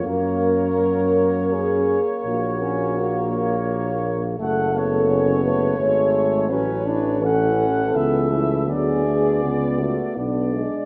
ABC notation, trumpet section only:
X:1
M:3/4
L:1/8
Q:1/4=83
K:F#
V:1 name="Trumpet section"
c6- | c6 | [K:F#m] f c4- c | c2 f2 e2 |
d4 d2 |]